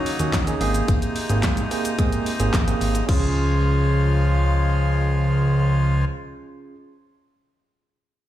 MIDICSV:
0, 0, Header, 1, 5, 480
1, 0, Start_track
1, 0, Key_signature, -5, "major"
1, 0, Tempo, 550459
1, 773, Time_signature, 4, 2, 24, 8
1, 7224, End_track
2, 0, Start_track
2, 0, Title_t, "Tine electric piano"
2, 0, Program_c, 0, 4
2, 170, Note_on_c, 0, 61, 86
2, 170, Note_on_c, 0, 63, 78
2, 174, Note_on_c, 0, 66, 96
2, 350, Note_off_c, 0, 61, 0
2, 350, Note_off_c, 0, 63, 0
2, 352, Note_off_c, 0, 66, 0
2, 410, Note_on_c, 0, 61, 83
2, 413, Note_on_c, 0, 63, 82
2, 415, Note_on_c, 0, 68, 101
2, 523, Note_off_c, 0, 68, 0
2, 529, Note_on_c, 0, 58, 92
2, 532, Note_off_c, 0, 61, 0
2, 532, Note_on_c, 0, 60, 82
2, 533, Note_off_c, 0, 63, 0
2, 534, Note_on_c, 0, 68, 95
2, 1011, Note_off_c, 0, 58, 0
2, 1013, Note_off_c, 0, 60, 0
2, 1014, Note_off_c, 0, 68, 0
2, 1130, Note_on_c, 0, 58, 88
2, 1132, Note_on_c, 0, 60, 78
2, 1134, Note_on_c, 0, 68, 98
2, 1399, Note_off_c, 0, 58, 0
2, 1400, Note_off_c, 0, 60, 0
2, 1401, Note_off_c, 0, 68, 0
2, 1490, Note_on_c, 0, 58, 87
2, 1491, Note_on_c, 0, 60, 77
2, 1493, Note_on_c, 0, 68, 94
2, 1670, Note_off_c, 0, 58, 0
2, 1671, Note_off_c, 0, 60, 0
2, 1672, Note_off_c, 0, 68, 0
2, 1731, Note_on_c, 0, 58, 87
2, 1734, Note_on_c, 0, 60, 80
2, 1735, Note_on_c, 0, 68, 100
2, 1999, Note_off_c, 0, 58, 0
2, 2001, Note_off_c, 0, 60, 0
2, 2001, Note_off_c, 0, 68, 0
2, 2089, Note_on_c, 0, 58, 84
2, 2092, Note_on_c, 0, 60, 80
2, 2095, Note_on_c, 0, 68, 97
2, 2269, Note_off_c, 0, 58, 0
2, 2271, Note_off_c, 0, 60, 0
2, 2272, Note_off_c, 0, 68, 0
2, 2329, Note_on_c, 0, 58, 85
2, 2331, Note_on_c, 0, 60, 79
2, 2333, Note_on_c, 0, 68, 92
2, 2598, Note_off_c, 0, 58, 0
2, 2600, Note_off_c, 0, 60, 0
2, 2601, Note_off_c, 0, 68, 0
2, 2671, Note_on_c, 0, 61, 84
2, 2689, Note_on_c, 0, 65, 79
2, 2706, Note_on_c, 0, 68, 90
2, 5875, Note_off_c, 0, 61, 0
2, 5884, Note_off_c, 0, 65, 0
2, 5893, Note_off_c, 0, 68, 0
2, 7224, End_track
3, 0, Start_track
3, 0, Title_t, "Accordion"
3, 0, Program_c, 1, 21
3, 0, Note_on_c, 1, 49, 85
3, 0, Note_on_c, 1, 54, 76
3, 0, Note_on_c, 1, 58, 73
3, 0, Note_on_c, 1, 63, 90
3, 515, Note_off_c, 1, 54, 0
3, 516, Note_off_c, 1, 49, 0
3, 534, Note_on_c, 1, 48, 81
3, 534, Note_on_c, 1, 56, 75
3, 2657, Note_off_c, 1, 63, 0
3, 2659, Note_off_c, 1, 58, 0
3, 2672, Note_off_c, 1, 48, 0
3, 2672, Note_off_c, 1, 56, 0
3, 2692, Note_on_c, 1, 65, 88
3, 2694, Note_on_c, 1, 49, 82
3, 2694, Note_on_c, 1, 53, 76
3, 2695, Note_on_c, 1, 56, 75
3, 5276, Note_off_c, 1, 49, 0
3, 5276, Note_off_c, 1, 65, 0
3, 5277, Note_off_c, 1, 53, 0
3, 5277, Note_off_c, 1, 56, 0
3, 7224, End_track
4, 0, Start_track
4, 0, Title_t, "Analog synth bass"
4, 0, Program_c, 2, 38
4, 171, Note_on_c, 2, 39, 89
4, 265, Note_off_c, 2, 39, 0
4, 290, Note_on_c, 2, 39, 96
4, 477, Note_off_c, 2, 39, 0
4, 531, Note_on_c, 2, 32, 96
4, 717, Note_off_c, 2, 32, 0
4, 771, Note_on_c, 2, 32, 110
4, 865, Note_off_c, 2, 32, 0
4, 1130, Note_on_c, 2, 32, 88
4, 1253, Note_on_c, 2, 44, 94
4, 1266, Note_off_c, 2, 32, 0
4, 1438, Note_off_c, 2, 44, 0
4, 1733, Note_on_c, 2, 44, 103
4, 1918, Note_off_c, 2, 44, 0
4, 2092, Note_on_c, 2, 32, 88
4, 2185, Note_off_c, 2, 32, 0
4, 2211, Note_on_c, 2, 32, 97
4, 2398, Note_off_c, 2, 32, 0
4, 2453, Note_on_c, 2, 32, 94
4, 2638, Note_off_c, 2, 32, 0
4, 2692, Note_on_c, 2, 37, 104
4, 5275, Note_off_c, 2, 37, 0
4, 7224, End_track
5, 0, Start_track
5, 0, Title_t, "Drums"
5, 53, Note_on_c, 9, 46, 78
5, 53, Note_on_c, 9, 82, 55
5, 141, Note_off_c, 9, 46, 0
5, 141, Note_off_c, 9, 82, 0
5, 170, Note_on_c, 9, 42, 58
5, 170, Note_on_c, 9, 82, 83
5, 257, Note_off_c, 9, 42, 0
5, 257, Note_off_c, 9, 82, 0
5, 291, Note_on_c, 9, 36, 113
5, 291, Note_on_c, 9, 39, 124
5, 292, Note_on_c, 9, 42, 71
5, 292, Note_on_c, 9, 82, 70
5, 299, Note_on_c, 9, 38, 99
5, 378, Note_off_c, 9, 36, 0
5, 378, Note_off_c, 9, 39, 0
5, 379, Note_off_c, 9, 42, 0
5, 379, Note_off_c, 9, 82, 0
5, 386, Note_off_c, 9, 38, 0
5, 412, Note_on_c, 9, 42, 64
5, 412, Note_on_c, 9, 82, 65
5, 499, Note_off_c, 9, 42, 0
5, 499, Note_off_c, 9, 82, 0
5, 530, Note_on_c, 9, 46, 76
5, 530, Note_on_c, 9, 82, 57
5, 617, Note_off_c, 9, 46, 0
5, 617, Note_off_c, 9, 82, 0
5, 649, Note_on_c, 9, 42, 51
5, 649, Note_on_c, 9, 82, 76
5, 736, Note_off_c, 9, 42, 0
5, 736, Note_off_c, 9, 82, 0
5, 771, Note_on_c, 9, 36, 120
5, 771, Note_on_c, 9, 42, 70
5, 771, Note_on_c, 9, 82, 65
5, 858, Note_off_c, 9, 42, 0
5, 858, Note_off_c, 9, 82, 0
5, 859, Note_off_c, 9, 36, 0
5, 891, Note_on_c, 9, 42, 56
5, 891, Note_on_c, 9, 82, 55
5, 978, Note_off_c, 9, 42, 0
5, 978, Note_off_c, 9, 82, 0
5, 1009, Note_on_c, 9, 46, 77
5, 1009, Note_on_c, 9, 82, 54
5, 1096, Note_off_c, 9, 46, 0
5, 1096, Note_off_c, 9, 82, 0
5, 1129, Note_on_c, 9, 42, 53
5, 1129, Note_on_c, 9, 82, 78
5, 1216, Note_off_c, 9, 42, 0
5, 1216, Note_off_c, 9, 82, 0
5, 1248, Note_on_c, 9, 42, 76
5, 1248, Note_on_c, 9, 82, 68
5, 1249, Note_on_c, 9, 39, 108
5, 1253, Note_on_c, 9, 36, 112
5, 1257, Note_on_c, 9, 38, 84
5, 1335, Note_off_c, 9, 42, 0
5, 1335, Note_off_c, 9, 82, 0
5, 1336, Note_off_c, 9, 39, 0
5, 1340, Note_off_c, 9, 36, 0
5, 1344, Note_off_c, 9, 38, 0
5, 1370, Note_on_c, 9, 42, 53
5, 1370, Note_on_c, 9, 82, 53
5, 1458, Note_off_c, 9, 42, 0
5, 1458, Note_off_c, 9, 82, 0
5, 1493, Note_on_c, 9, 46, 79
5, 1493, Note_on_c, 9, 82, 54
5, 1580, Note_off_c, 9, 46, 0
5, 1580, Note_off_c, 9, 82, 0
5, 1613, Note_on_c, 9, 42, 65
5, 1613, Note_on_c, 9, 82, 94
5, 1700, Note_off_c, 9, 42, 0
5, 1700, Note_off_c, 9, 82, 0
5, 1731, Note_on_c, 9, 42, 65
5, 1731, Note_on_c, 9, 82, 64
5, 1732, Note_on_c, 9, 36, 102
5, 1819, Note_off_c, 9, 42, 0
5, 1819, Note_off_c, 9, 82, 0
5, 1820, Note_off_c, 9, 36, 0
5, 1853, Note_on_c, 9, 42, 53
5, 1853, Note_on_c, 9, 82, 55
5, 1940, Note_off_c, 9, 42, 0
5, 1940, Note_off_c, 9, 82, 0
5, 1973, Note_on_c, 9, 46, 78
5, 1973, Note_on_c, 9, 82, 56
5, 2061, Note_off_c, 9, 46, 0
5, 2061, Note_off_c, 9, 82, 0
5, 2090, Note_on_c, 9, 42, 59
5, 2090, Note_on_c, 9, 82, 84
5, 2177, Note_off_c, 9, 42, 0
5, 2177, Note_off_c, 9, 82, 0
5, 2211, Note_on_c, 9, 36, 120
5, 2212, Note_on_c, 9, 39, 127
5, 2213, Note_on_c, 9, 42, 68
5, 2213, Note_on_c, 9, 82, 74
5, 2220, Note_on_c, 9, 38, 104
5, 2298, Note_off_c, 9, 36, 0
5, 2299, Note_off_c, 9, 39, 0
5, 2300, Note_off_c, 9, 42, 0
5, 2300, Note_off_c, 9, 82, 0
5, 2307, Note_off_c, 9, 38, 0
5, 2334, Note_on_c, 9, 42, 65
5, 2334, Note_on_c, 9, 82, 64
5, 2421, Note_off_c, 9, 42, 0
5, 2421, Note_off_c, 9, 82, 0
5, 2452, Note_on_c, 9, 46, 75
5, 2452, Note_on_c, 9, 82, 52
5, 2540, Note_off_c, 9, 46, 0
5, 2540, Note_off_c, 9, 82, 0
5, 2571, Note_on_c, 9, 42, 51
5, 2571, Note_on_c, 9, 82, 76
5, 2658, Note_off_c, 9, 42, 0
5, 2658, Note_off_c, 9, 82, 0
5, 2692, Note_on_c, 9, 36, 105
5, 2692, Note_on_c, 9, 49, 86
5, 2779, Note_off_c, 9, 36, 0
5, 2779, Note_off_c, 9, 49, 0
5, 7224, End_track
0, 0, End_of_file